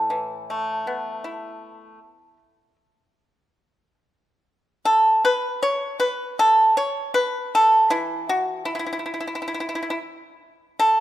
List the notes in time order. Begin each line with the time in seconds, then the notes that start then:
Already playing: A2 A4
0.10 E3
0.50 A3
0.87 B3
1.24 E4
4.85 A4
5.25 B4
5.63 C#5
6.00 B4
6.39 A4
6.77 C#5
7.14 B4
7.55 A4
7.90 E3 E4
8.29 F#4
8.65 E4
8.75 E4
8.79 E4
8.86 E4
8.93 E4
8.99 E4
9.06 E4
9.14 E4
9.20 E4
9.27 E4
9.35 E4
9.42 E4
9.48 E4
9.54 E4
9.60 E4
9.69 E4
9.75 E4
9.82 E4
9.90 E4
10.79 A4